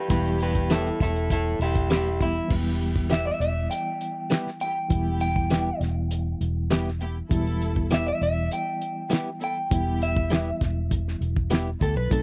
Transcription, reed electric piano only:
0.08 E3 G3 B3 E4
2.19 E3 G3 B3 E4
2.48 E3 G3 B3 E4
4.88 E3 G3 B3 E4
7.29 E3 G3 B3 E4
9.70 E3 G3 B3 E4
12.10 F#3 A3 C4 D#4

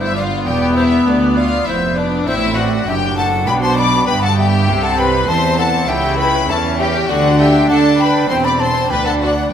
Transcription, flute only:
0.01 C5
0.16 D5
0.46 D5
0.76 C5
1.07 B4
1.37 D5
1.68 C5
1.97 B4
2.28 C5
2.57 D5
2.88 E5
3.17 F#5
3.48 G5
3.63 A5
3.78 B5
4.08 G5
4.22 F#5
4.37 E5
4.83 F#5
4.98 G5
5.28 A5
5.58 F#5
5.88 E5
6.19 G5
6.49 E5
6.80 E5
7.09 D5
7.39 E5
7.70 F#5
7.99 G5
8.30 G5
8.45 B5
8.60 A5
8.90 G5
9.06 F#5
9.21 D5

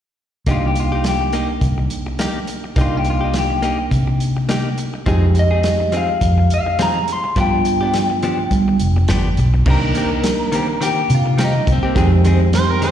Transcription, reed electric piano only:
0.47 A#3 D4 D#4
2.76 A#3 D4 D#4
5.06 G#3 D#4 G4
7.36 B3 D4 F4
9.66 A#3 D4 D#4
11.95 G#3 D#4 G4

